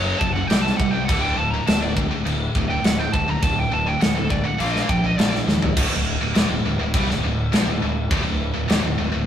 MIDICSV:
0, 0, Header, 1, 5, 480
1, 0, Start_track
1, 0, Tempo, 585366
1, 895, Time_signature, 4, 2, 24, 8
1, 7596, End_track
2, 0, Start_track
2, 0, Title_t, "Lead electric guitar"
2, 0, Program_c, 0, 29
2, 0, Note_on_c, 0, 73, 92
2, 153, Note_on_c, 0, 81, 121
2, 158, Note_off_c, 0, 73, 0
2, 269, Note_off_c, 0, 81, 0
2, 272, Note_on_c, 0, 78, 82
2, 386, Note_off_c, 0, 78, 0
2, 386, Note_on_c, 0, 79, 91
2, 504, Note_off_c, 0, 79, 0
2, 504, Note_on_c, 0, 81, 118
2, 627, Note_off_c, 0, 81, 0
2, 630, Note_on_c, 0, 78, 86
2, 743, Note_off_c, 0, 78, 0
2, 743, Note_on_c, 0, 79, 112
2, 859, Note_off_c, 0, 79, 0
2, 862, Note_on_c, 0, 78, 90
2, 993, Note_off_c, 0, 78, 0
2, 996, Note_on_c, 0, 79, 97
2, 1125, Note_off_c, 0, 79, 0
2, 1125, Note_on_c, 0, 81, 101
2, 1236, Note_on_c, 0, 82, 106
2, 1247, Note_off_c, 0, 81, 0
2, 1362, Note_off_c, 0, 82, 0
2, 1371, Note_on_c, 0, 81, 90
2, 1480, Note_on_c, 0, 74, 87
2, 1490, Note_off_c, 0, 81, 0
2, 1557, Note_off_c, 0, 74, 0
2, 2210, Note_on_c, 0, 79, 95
2, 2330, Note_off_c, 0, 79, 0
2, 2330, Note_on_c, 0, 78, 87
2, 2449, Note_off_c, 0, 78, 0
2, 2449, Note_on_c, 0, 79, 90
2, 2562, Note_on_c, 0, 81, 89
2, 2569, Note_off_c, 0, 79, 0
2, 2701, Note_off_c, 0, 81, 0
2, 2701, Note_on_c, 0, 82, 112
2, 2807, Note_off_c, 0, 82, 0
2, 2807, Note_on_c, 0, 81, 93
2, 2928, Note_off_c, 0, 81, 0
2, 2948, Note_on_c, 0, 79, 105
2, 3059, Note_off_c, 0, 79, 0
2, 3062, Note_on_c, 0, 81, 116
2, 3168, Note_on_c, 0, 79, 80
2, 3176, Note_off_c, 0, 81, 0
2, 3289, Note_off_c, 0, 79, 0
2, 3295, Note_on_c, 0, 78, 85
2, 3412, Note_off_c, 0, 78, 0
2, 3426, Note_on_c, 0, 69, 62
2, 3529, Note_on_c, 0, 74, 103
2, 3538, Note_off_c, 0, 69, 0
2, 3649, Note_off_c, 0, 74, 0
2, 3652, Note_on_c, 0, 78, 108
2, 3771, Note_off_c, 0, 78, 0
2, 3777, Note_on_c, 0, 77, 85
2, 3854, Note_off_c, 0, 77, 0
2, 3863, Note_on_c, 0, 75, 76
2, 3933, Note_on_c, 0, 77, 79
2, 3938, Note_off_c, 0, 75, 0
2, 4012, Note_off_c, 0, 77, 0
2, 4016, Note_on_c, 0, 79, 115
2, 4133, Note_off_c, 0, 79, 0
2, 4149, Note_on_c, 0, 75, 79
2, 4241, Note_off_c, 0, 75, 0
2, 4241, Note_on_c, 0, 74, 92
2, 4390, Note_off_c, 0, 74, 0
2, 7596, End_track
3, 0, Start_track
3, 0, Title_t, "Distorted electric guitar"
3, 0, Program_c, 1, 30
3, 0, Note_on_c, 1, 42, 86
3, 0, Note_on_c, 1, 49, 93
3, 0, Note_on_c, 1, 54, 105
3, 154, Note_off_c, 1, 42, 0
3, 158, Note_off_c, 1, 49, 0
3, 161, Note_off_c, 1, 54, 0
3, 169, Note_on_c, 1, 49, 80
3, 175, Note_on_c, 1, 42, 67
3, 283, Note_off_c, 1, 42, 0
3, 284, Note_off_c, 1, 49, 0
3, 293, Note_on_c, 1, 42, 85
3, 294, Note_on_c, 1, 49, 92
3, 403, Note_off_c, 1, 42, 0
3, 406, Note_on_c, 1, 48, 110
3, 408, Note_off_c, 1, 49, 0
3, 411, Note_on_c, 1, 55, 114
3, 417, Note_on_c, 1, 60, 99
3, 515, Note_off_c, 1, 55, 0
3, 516, Note_off_c, 1, 48, 0
3, 522, Note_off_c, 1, 60, 0
3, 525, Note_on_c, 1, 55, 71
3, 528, Note_on_c, 1, 48, 72
3, 645, Note_off_c, 1, 48, 0
3, 645, Note_off_c, 1, 55, 0
3, 655, Note_on_c, 1, 48, 71
3, 655, Note_on_c, 1, 55, 75
3, 757, Note_off_c, 1, 55, 0
3, 761, Note_off_c, 1, 48, 0
3, 767, Note_on_c, 1, 55, 94
3, 771, Note_on_c, 1, 48, 73
3, 886, Note_off_c, 1, 48, 0
3, 889, Note_on_c, 1, 38, 103
3, 891, Note_off_c, 1, 55, 0
3, 897, Note_on_c, 1, 45, 96
3, 901, Note_on_c, 1, 50, 109
3, 1118, Note_off_c, 1, 38, 0
3, 1122, Note_off_c, 1, 45, 0
3, 1124, Note_off_c, 1, 50, 0
3, 1135, Note_on_c, 1, 45, 79
3, 1136, Note_on_c, 1, 38, 67
3, 1250, Note_off_c, 1, 45, 0
3, 1256, Note_off_c, 1, 38, 0
3, 1260, Note_on_c, 1, 45, 92
3, 1265, Note_on_c, 1, 38, 70
3, 1361, Note_off_c, 1, 38, 0
3, 1367, Note_off_c, 1, 45, 0
3, 1371, Note_on_c, 1, 38, 85
3, 1377, Note_on_c, 1, 45, 93
3, 1483, Note_off_c, 1, 38, 0
3, 1483, Note_off_c, 1, 45, 0
3, 1492, Note_on_c, 1, 45, 104
3, 1493, Note_on_c, 1, 38, 77
3, 1604, Note_off_c, 1, 38, 0
3, 1605, Note_off_c, 1, 45, 0
3, 1614, Note_on_c, 1, 38, 74
3, 1615, Note_on_c, 1, 45, 81
3, 1719, Note_off_c, 1, 45, 0
3, 1727, Note_off_c, 1, 38, 0
3, 1729, Note_on_c, 1, 45, 77
3, 1737, Note_on_c, 1, 38, 62
3, 1837, Note_off_c, 1, 38, 0
3, 1843, Note_off_c, 1, 45, 0
3, 1847, Note_on_c, 1, 38, 79
3, 1853, Note_on_c, 1, 45, 89
3, 2068, Note_off_c, 1, 38, 0
3, 2071, Note_off_c, 1, 45, 0
3, 2098, Note_on_c, 1, 45, 76
3, 2101, Note_on_c, 1, 38, 65
3, 2203, Note_off_c, 1, 45, 0
3, 2207, Note_off_c, 1, 38, 0
3, 2213, Note_on_c, 1, 45, 94
3, 2217, Note_on_c, 1, 38, 68
3, 2326, Note_off_c, 1, 45, 0
3, 2328, Note_off_c, 1, 38, 0
3, 2336, Note_on_c, 1, 45, 96
3, 2338, Note_on_c, 1, 38, 87
3, 2446, Note_off_c, 1, 45, 0
3, 2453, Note_off_c, 1, 38, 0
3, 2456, Note_on_c, 1, 45, 85
3, 2463, Note_on_c, 1, 38, 67
3, 2567, Note_off_c, 1, 45, 0
3, 2572, Note_off_c, 1, 38, 0
3, 2577, Note_on_c, 1, 45, 68
3, 2582, Note_on_c, 1, 38, 62
3, 2679, Note_off_c, 1, 45, 0
3, 2685, Note_off_c, 1, 38, 0
3, 2688, Note_on_c, 1, 45, 92
3, 2695, Note_on_c, 1, 38, 67
3, 2797, Note_off_c, 1, 38, 0
3, 2800, Note_off_c, 1, 45, 0
3, 2806, Note_on_c, 1, 38, 83
3, 2810, Note_on_c, 1, 45, 90
3, 3028, Note_off_c, 1, 38, 0
3, 3030, Note_off_c, 1, 45, 0
3, 3046, Note_on_c, 1, 45, 69
3, 3047, Note_on_c, 1, 38, 57
3, 3159, Note_off_c, 1, 45, 0
3, 3160, Note_off_c, 1, 38, 0
3, 3169, Note_on_c, 1, 45, 91
3, 3170, Note_on_c, 1, 38, 79
3, 3269, Note_off_c, 1, 38, 0
3, 3274, Note_off_c, 1, 45, 0
3, 3279, Note_on_c, 1, 38, 80
3, 3283, Note_on_c, 1, 45, 85
3, 3391, Note_off_c, 1, 45, 0
3, 3392, Note_off_c, 1, 38, 0
3, 3400, Note_on_c, 1, 45, 94
3, 3402, Note_on_c, 1, 38, 78
3, 3512, Note_off_c, 1, 45, 0
3, 3517, Note_off_c, 1, 38, 0
3, 3522, Note_on_c, 1, 45, 81
3, 3527, Note_on_c, 1, 38, 60
3, 3630, Note_off_c, 1, 45, 0
3, 3638, Note_off_c, 1, 38, 0
3, 3640, Note_on_c, 1, 45, 81
3, 3648, Note_on_c, 1, 38, 70
3, 3755, Note_off_c, 1, 38, 0
3, 3758, Note_on_c, 1, 46, 98
3, 3765, Note_off_c, 1, 45, 0
3, 3768, Note_on_c, 1, 53, 88
3, 3772, Note_on_c, 1, 58, 97
3, 3993, Note_off_c, 1, 46, 0
3, 3998, Note_off_c, 1, 53, 0
3, 4000, Note_off_c, 1, 58, 0
3, 4009, Note_on_c, 1, 53, 73
3, 4015, Note_on_c, 1, 46, 66
3, 4121, Note_off_c, 1, 46, 0
3, 4121, Note_off_c, 1, 53, 0
3, 4130, Note_on_c, 1, 53, 76
3, 4131, Note_on_c, 1, 46, 66
3, 4238, Note_off_c, 1, 46, 0
3, 4244, Note_off_c, 1, 53, 0
3, 4248, Note_on_c, 1, 46, 100
3, 4254, Note_on_c, 1, 53, 109
3, 4260, Note_on_c, 1, 58, 101
3, 4358, Note_off_c, 1, 46, 0
3, 4361, Note_off_c, 1, 53, 0
3, 4364, Note_off_c, 1, 58, 0
3, 4370, Note_on_c, 1, 53, 67
3, 4371, Note_on_c, 1, 46, 56
3, 4481, Note_off_c, 1, 46, 0
3, 4481, Note_off_c, 1, 53, 0
3, 4491, Note_on_c, 1, 46, 68
3, 4491, Note_on_c, 1, 53, 80
3, 4601, Note_off_c, 1, 53, 0
3, 4604, Note_off_c, 1, 46, 0
3, 4611, Note_on_c, 1, 53, 83
3, 4614, Note_on_c, 1, 46, 75
3, 4726, Note_off_c, 1, 46, 0
3, 4730, Note_on_c, 1, 38, 90
3, 4732, Note_off_c, 1, 53, 0
3, 4736, Note_on_c, 1, 45, 110
3, 4838, Note_off_c, 1, 38, 0
3, 4846, Note_off_c, 1, 45, 0
3, 4848, Note_on_c, 1, 38, 64
3, 4856, Note_on_c, 1, 45, 73
3, 5044, Note_off_c, 1, 38, 0
3, 5048, Note_off_c, 1, 45, 0
3, 5093, Note_on_c, 1, 38, 72
3, 5096, Note_on_c, 1, 45, 73
3, 5198, Note_off_c, 1, 38, 0
3, 5201, Note_on_c, 1, 39, 100
3, 5206, Note_off_c, 1, 45, 0
3, 5210, Note_on_c, 1, 46, 105
3, 5322, Note_off_c, 1, 39, 0
3, 5326, Note_off_c, 1, 46, 0
3, 5330, Note_on_c, 1, 38, 77
3, 5331, Note_on_c, 1, 45, 83
3, 5447, Note_off_c, 1, 38, 0
3, 5448, Note_off_c, 1, 45, 0
3, 5456, Note_on_c, 1, 38, 75
3, 5458, Note_on_c, 1, 45, 75
3, 5559, Note_off_c, 1, 38, 0
3, 5565, Note_off_c, 1, 45, 0
3, 5569, Note_on_c, 1, 38, 64
3, 5575, Note_on_c, 1, 45, 80
3, 5688, Note_off_c, 1, 38, 0
3, 5691, Note_on_c, 1, 48, 88
3, 5696, Note_off_c, 1, 45, 0
3, 5699, Note_on_c, 1, 55, 110
3, 5806, Note_off_c, 1, 48, 0
3, 5810, Note_off_c, 1, 55, 0
3, 5818, Note_on_c, 1, 38, 68
3, 5822, Note_on_c, 1, 45, 73
3, 5923, Note_off_c, 1, 38, 0
3, 5925, Note_off_c, 1, 45, 0
3, 5932, Note_on_c, 1, 38, 63
3, 5935, Note_on_c, 1, 45, 73
3, 6126, Note_off_c, 1, 38, 0
3, 6127, Note_off_c, 1, 45, 0
3, 6170, Note_on_c, 1, 46, 96
3, 6176, Note_on_c, 1, 53, 111
3, 6285, Note_off_c, 1, 46, 0
3, 6289, Note_off_c, 1, 53, 0
3, 6296, Note_on_c, 1, 38, 66
3, 6303, Note_on_c, 1, 45, 68
3, 6403, Note_off_c, 1, 45, 0
3, 6404, Note_off_c, 1, 38, 0
3, 6413, Note_on_c, 1, 45, 72
3, 6414, Note_on_c, 1, 38, 63
3, 6606, Note_off_c, 1, 45, 0
3, 6607, Note_off_c, 1, 38, 0
3, 6650, Note_on_c, 1, 38, 91
3, 6654, Note_on_c, 1, 45, 112
3, 6755, Note_off_c, 1, 38, 0
3, 6761, Note_off_c, 1, 45, 0
3, 6765, Note_on_c, 1, 38, 67
3, 6771, Note_on_c, 1, 45, 78
3, 6962, Note_off_c, 1, 38, 0
3, 6965, Note_off_c, 1, 45, 0
3, 7003, Note_on_c, 1, 45, 83
3, 7004, Note_on_c, 1, 38, 66
3, 7115, Note_off_c, 1, 38, 0
3, 7118, Note_off_c, 1, 45, 0
3, 7118, Note_on_c, 1, 39, 90
3, 7121, Note_on_c, 1, 46, 106
3, 7238, Note_off_c, 1, 46, 0
3, 7239, Note_off_c, 1, 39, 0
3, 7242, Note_on_c, 1, 45, 79
3, 7244, Note_on_c, 1, 38, 72
3, 7354, Note_off_c, 1, 38, 0
3, 7354, Note_off_c, 1, 45, 0
3, 7363, Note_on_c, 1, 38, 73
3, 7364, Note_on_c, 1, 45, 70
3, 7467, Note_off_c, 1, 38, 0
3, 7473, Note_off_c, 1, 45, 0
3, 7477, Note_on_c, 1, 38, 64
3, 7483, Note_on_c, 1, 45, 81
3, 7591, Note_off_c, 1, 38, 0
3, 7596, Note_off_c, 1, 45, 0
3, 7596, End_track
4, 0, Start_track
4, 0, Title_t, "Fingered electric bass"
4, 0, Program_c, 2, 33
4, 0, Note_on_c, 2, 30, 92
4, 99, Note_off_c, 2, 30, 0
4, 171, Note_on_c, 2, 30, 97
4, 340, Note_off_c, 2, 30, 0
4, 405, Note_on_c, 2, 36, 93
4, 577, Note_off_c, 2, 36, 0
4, 649, Note_on_c, 2, 36, 96
4, 893, Note_on_c, 2, 26, 100
4, 906, Note_off_c, 2, 36, 0
4, 1062, Note_off_c, 2, 26, 0
4, 1132, Note_on_c, 2, 26, 83
4, 1301, Note_off_c, 2, 26, 0
4, 1370, Note_on_c, 2, 26, 90
4, 1708, Note_off_c, 2, 26, 0
4, 1845, Note_on_c, 2, 26, 87
4, 2017, Note_off_c, 2, 26, 0
4, 2090, Note_on_c, 2, 26, 93
4, 2260, Note_off_c, 2, 26, 0
4, 2326, Note_on_c, 2, 26, 101
4, 2497, Note_off_c, 2, 26, 0
4, 2570, Note_on_c, 2, 26, 95
4, 2740, Note_off_c, 2, 26, 0
4, 2807, Note_on_c, 2, 26, 93
4, 2978, Note_off_c, 2, 26, 0
4, 3052, Note_on_c, 2, 26, 85
4, 3222, Note_off_c, 2, 26, 0
4, 3295, Note_on_c, 2, 26, 90
4, 3632, Note_off_c, 2, 26, 0
4, 3773, Note_on_c, 2, 34, 98
4, 3942, Note_off_c, 2, 34, 0
4, 4009, Note_on_c, 2, 34, 82
4, 4180, Note_off_c, 2, 34, 0
4, 4252, Note_on_c, 2, 34, 95
4, 4421, Note_off_c, 2, 34, 0
4, 4485, Note_on_c, 2, 39, 89
4, 4657, Note_off_c, 2, 39, 0
4, 4730, Note_on_c, 2, 26, 92
4, 4845, Note_off_c, 2, 26, 0
4, 4854, Note_on_c, 2, 26, 80
4, 5079, Note_off_c, 2, 26, 0
4, 5088, Note_on_c, 2, 26, 72
4, 5201, Note_off_c, 2, 26, 0
4, 5205, Note_on_c, 2, 27, 98
4, 5317, Note_off_c, 2, 27, 0
4, 5322, Note_on_c, 2, 26, 91
4, 5440, Note_off_c, 2, 26, 0
4, 5446, Note_on_c, 2, 26, 85
4, 5562, Note_off_c, 2, 26, 0
4, 5574, Note_on_c, 2, 26, 87
4, 5684, Note_off_c, 2, 26, 0
4, 5689, Note_on_c, 2, 36, 96
4, 5801, Note_off_c, 2, 36, 0
4, 5805, Note_on_c, 2, 26, 91
4, 5922, Note_off_c, 2, 26, 0
4, 5931, Note_on_c, 2, 26, 80
4, 6156, Note_off_c, 2, 26, 0
4, 6168, Note_on_c, 2, 34, 110
4, 6283, Note_off_c, 2, 34, 0
4, 6293, Note_on_c, 2, 26, 79
4, 6406, Note_off_c, 2, 26, 0
4, 6412, Note_on_c, 2, 26, 79
4, 6637, Note_off_c, 2, 26, 0
4, 6646, Note_on_c, 2, 26, 102
4, 6762, Note_off_c, 2, 26, 0
4, 6773, Note_on_c, 2, 26, 79
4, 6997, Note_off_c, 2, 26, 0
4, 7012, Note_on_c, 2, 26, 71
4, 7125, Note_off_c, 2, 26, 0
4, 7131, Note_on_c, 2, 27, 96
4, 7242, Note_off_c, 2, 27, 0
4, 7247, Note_on_c, 2, 26, 85
4, 7362, Note_off_c, 2, 26, 0
4, 7367, Note_on_c, 2, 26, 87
4, 7482, Note_off_c, 2, 26, 0
4, 7488, Note_on_c, 2, 26, 81
4, 7596, Note_off_c, 2, 26, 0
4, 7596, End_track
5, 0, Start_track
5, 0, Title_t, "Drums"
5, 172, Note_on_c, 9, 36, 96
5, 254, Note_off_c, 9, 36, 0
5, 410, Note_on_c, 9, 49, 70
5, 419, Note_on_c, 9, 38, 124
5, 492, Note_off_c, 9, 49, 0
5, 501, Note_off_c, 9, 38, 0
5, 546, Note_on_c, 9, 38, 34
5, 628, Note_off_c, 9, 38, 0
5, 653, Note_on_c, 9, 36, 96
5, 735, Note_off_c, 9, 36, 0
5, 894, Note_on_c, 9, 36, 121
5, 901, Note_on_c, 9, 49, 75
5, 976, Note_off_c, 9, 36, 0
5, 983, Note_off_c, 9, 49, 0
5, 1373, Note_on_c, 9, 49, 73
5, 1382, Note_on_c, 9, 38, 127
5, 1455, Note_off_c, 9, 49, 0
5, 1464, Note_off_c, 9, 38, 0
5, 1612, Note_on_c, 9, 36, 84
5, 1694, Note_off_c, 9, 36, 0
5, 1858, Note_on_c, 9, 49, 64
5, 1940, Note_off_c, 9, 49, 0
5, 2092, Note_on_c, 9, 36, 85
5, 2174, Note_off_c, 9, 36, 0
5, 2331, Note_on_c, 9, 49, 65
5, 2340, Note_on_c, 9, 38, 118
5, 2413, Note_off_c, 9, 49, 0
5, 2422, Note_off_c, 9, 38, 0
5, 2571, Note_on_c, 9, 36, 90
5, 2653, Note_off_c, 9, 36, 0
5, 2810, Note_on_c, 9, 36, 120
5, 2810, Note_on_c, 9, 49, 65
5, 2892, Note_off_c, 9, 36, 0
5, 2892, Note_off_c, 9, 49, 0
5, 3291, Note_on_c, 9, 49, 62
5, 3300, Note_on_c, 9, 38, 113
5, 3373, Note_off_c, 9, 49, 0
5, 3382, Note_off_c, 9, 38, 0
5, 3529, Note_on_c, 9, 36, 76
5, 3611, Note_off_c, 9, 36, 0
5, 3772, Note_on_c, 9, 49, 68
5, 3854, Note_off_c, 9, 49, 0
5, 3902, Note_on_c, 9, 38, 37
5, 3984, Note_off_c, 9, 38, 0
5, 4012, Note_on_c, 9, 36, 93
5, 4094, Note_off_c, 9, 36, 0
5, 4254, Note_on_c, 9, 49, 76
5, 4263, Note_on_c, 9, 38, 127
5, 4336, Note_off_c, 9, 49, 0
5, 4345, Note_off_c, 9, 38, 0
5, 4386, Note_on_c, 9, 38, 39
5, 4468, Note_off_c, 9, 38, 0
5, 4498, Note_on_c, 9, 38, 68
5, 4580, Note_off_c, 9, 38, 0
5, 4613, Note_on_c, 9, 43, 91
5, 4695, Note_off_c, 9, 43, 0
5, 4730, Note_on_c, 9, 36, 113
5, 4730, Note_on_c, 9, 49, 78
5, 4730, Note_on_c, 9, 57, 127
5, 4812, Note_off_c, 9, 36, 0
5, 4812, Note_off_c, 9, 49, 0
5, 4812, Note_off_c, 9, 57, 0
5, 5209, Note_on_c, 9, 49, 74
5, 5218, Note_on_c, 9, 38, 127
5, 5291, Note_off_c, 9, 49, 0
5, 5300, Note_off_c, 9, 38, 0
5, 5690, Note_on_c, 9, 36, 125
5, 5695, Note_on_c, 9, 49, 70
5, 5772, Note_off_c, 9, 36, 0
5, 5777, Note_off_c, 9, 49, 0
5, 5826, Note_on_c, 9, 38, 37
5, 5908, Note_off_c, 9, 38, 0
5, 6174, Note_on_c, 9, 49, 68
5, 6183, Note_on_c, 9, 38, 122
5, 6256, Note_off_c, 9, 49, 0
5, 6265, Note_off_c, 9, 38, 0
5, 6650, Note_on_c, 9, 36, 112
5, 6655, Note_on_c, 9, 49, 69
5, 6732, Note_off_c, 9, 36, 0
5, 6737, Note_off_c, 9, 49, 0
5, 7130, Note_on_c, 9, 49, 68
5, 7139, Note_on_c, 9, 38, 113
5, 7212, Note_off_c, 9, 49, 0
5, 7221, Note_off_c, 9, 38, 0
5, 7596, End_track
0, 0, End_of_file